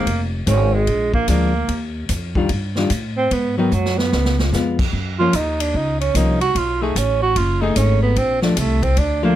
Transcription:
Already playing: A#3
0.06 F1, kick, ride
0.47 G#1 D#3 G#3 C4 C#4, kick, hi-hat pedal, ride
0.74 G#3
0.87 A#1, kick, ride
1.14 A#3, kick
1.28 D2 F3 G#3 A#3 D4, kick, hi-hat pedal, ride
1.68 D#2, kick, ride
2.09 F2, kick, hi-hat pedal, ride
2.35 D#3 G3 D4 F4, kick
2.49 G2, kick, ride
2.76 D#3 G3 D4 F4, snare
2.90 A2, kick, hi-hat pedal, ride
3.17 C4
3.31 G#2 B3, kick, ride
3.57 D#3 F#3 B3 D#4
3.72 F#2 F#3, hi-hat pedal, high tom
3.85 snare
3.98 B3, snare
4.12 C#2, snare
4.25 snare
4.39 snare
4.53 F2 G#3 B3 F4, snare, hi-hat pedal
4.79 kick, crash
4.93 F#2, kick
5.19 F3 A#3 C#4 F4
5.33 D#2 D#4, kick, hi-hat pedal, ride
5.60 D4, ride
5.74 C#2 D#4, kick
6.00 C#4, ride
6.15 C2 F3 A#3 C#4 D#4, kick, hi-hat pedal, ride
6.41 F#4, ride
6.55 B1 F4, kick, ride
6.82 A3 D#4 G#4
6.96 A1 C#4, kick, hi-hat pedal, ride
7.22 F#4
7.36 F#1 F4, kick, ride
7.61 A3 D#4 G#4
7.76 G#1 C#4, kick, hi-hat pedal, ride
8.02 B3
8.16 A#1 C4, kick, ride
8.42 F3 A3 D4, snare
8.56 C2 A3, kick, hi-hat pedal, ride
8.83 C4, kick, ride
8.97 D2 D4, kick, ride
9.23 F3 A3 A#3 D4

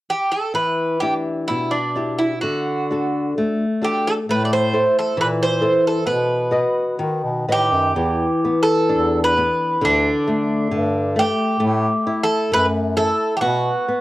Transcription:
0.10 G4
0.32 A4
0.54 E3 B4
1.00 D4 E4 G4
1.48 B2 E4
1.71 D4
1.95 D4 E4 G4
2.18 E4
2.41 D3 F#4
2.90 D4 F#4 A4
3.38 A3
3.82 D4 F#4 G4 A4
4.07 A4
4.28 A2 A3 B4
4.45 D5
4.53 C5
4.73 E4 A4 C5
4.99 A4
5.16 A#2 E3
5.21 B4
5.43 C5
5.61 E4 A4 C5
5.87 A4
6.06 B2 B3 B4
6.51 F#4 B4 D#5
6.99 D#3
7.23 B2
7.48 A2 B4 D#5 F#5
7.52 G4
7.71 F#2
7.95 E2 E3
8.45 B3
8.63 A4
8.89 E2 D4
9.24 B4
9.37 B3
9.81 D2 D3 D4
10.27 A3
10.70 G2 D3
11.16 A3 G4
11.60 A2 A3
12.07 E4
12.23 A4
12.51 F#2 A3 B4
12.97 E4 A4
13.37 G4
13.41 B2 B3 F#4
13.88 B3

